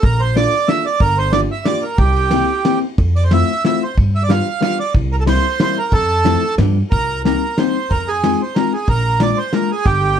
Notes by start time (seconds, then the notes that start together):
0.03 A#1 A#4, kick, ride
0.20 C5, ride
0.36 A#3 D4 F4 A4 D5, snare, ride
0.68 A#3 D4 F4 A4 E5, snare, ride
0.86 D5
1.00 G1 A#4, kick, ride
1.18 C5, ride
1.33 A#3 D4 F4 G4 D5, snare, ride
1.52 E5
1.65 A#3 D4 F4 G4 D5, snare, ride
1.83 A#4
1.98 C2 G4, kick, ride
2.16 ride
2.31 A#3 C4 E4 G4, snare, ride
2.65 A#3 C4 E4 G4, snare, ride
2.98 F2, kick, ride
3.16 D5, ride
3.24 C5
3.31 A3 C4 E4 F4 E5, snare, ride
3.64 A3 C4 E4 F4 E5, snare, ride
3.83 C5
3.97 G2, kick, ride
4.15 E5, ride
4.23 D5
4.29 G3 B3 D4 F4 F5, snare, ride
4.61 G3 B3 D4 F4 F5, snare, ride
4.80 D5
4.94 C2, kick, ride
5.12 A#4, ride
5.20 A4
5.26 G3 A#3 C4 E4 C5, snare, ride
5.60 G3 A#3 C4 E4 C5, snare, ride
5.79 A#4
5.92 F2 A4, kick, ride
6.10 ride
6.25 F3 A3 C4 E4, snare, ride
6.58 G2 F3 G3 B3 D4, snare, ride
6.91 C2 A#4, kick, ride
7.25 G3 A#3 C4 D#4 A#4, snare, ride
7.58 G3 A#3 C4 D#4 C5, snare, ride
7.90 F2 A#4, kick, ride
8.08 G#4
8.24 G#3 C4 D#4 F4, snare, ride
8.42 C5
8.55 G#3 C4 D#4 F4 A#4, snare, ride
8.74 G#4
8.87 A#1 A#4, kick, ride
9.20 G#3 A#3 D4 F4 D5, snare, ride
9.38 C5
9.53 G#3 A#3 D4 F4 A#4, snare, ride
9.71 G#4
9.86 G1 G4, kick, ride